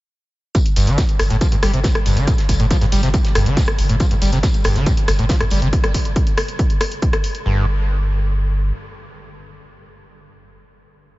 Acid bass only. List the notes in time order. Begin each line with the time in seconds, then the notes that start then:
0.55 G2
0.76 G2
0.87 D3
0.98 G2
1.30 A2
1.41 F3
1.52 G2
1.63 G3
1.74 C3
1.84 G2
2.06 G2
2.17 D3
2.27 G2
2.60 A2
2.71 F3
2.81 G2
2.92 G3
3.03 C3
3.14 G2
3.35 G2
3.46 D3
3.57 G2
3.89 A2
4.00 F3
4.11 G2
4.22 G3
4.33 C3
4.43 G2
4.65 G2
4.76 D3
4.87 G2
5.19 A2
5.30 F3
5.41 G2
5.51 G3
5.62 C3
7.46 G2